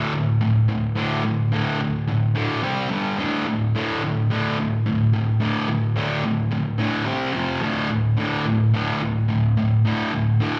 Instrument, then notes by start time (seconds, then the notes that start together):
distorted electric guitar
Already playing: D2 A2 D3
0.13 D2 A2
0.41 D2 A2
0.68 D2 A2
0.95 D2 A2 D3
1.24 D2 A2
1.52 D2 A2 D3
1.80 D2 A2
2.08 D2 A2
2.35 D2 A2 D3
2.62 C3 G3 C4
2.89 G2 D3 G3
3.18 D2 A2 D3
3.47 D2 A2
3.75 D2 A2 D3
4.04 D2 A2
4.30 D2 A2 D3
4.58 D2 A2
4.86 D2 A2
5.13 D2 A2
5.41 D2 A2 D3
5.69 D2 A2
5.96 D2 A2 D3
6.24 D2 A2
6.51 D2 A2
6.78 D2 A2 D3
7.05 C3 G3 C4
7.33 F2 C3 F3
7.61 D2 A2 D3
7.90 D2 A2
8.17 D2 A2 D3
8.46 D2 A2
8.74 D2 A2 D3
9.01 D2 A2
9.29 D2 A2
9.57 D2 A2
9.85 D2 A2 D3
10.14 D2 A2
10.40 D2 A2 D3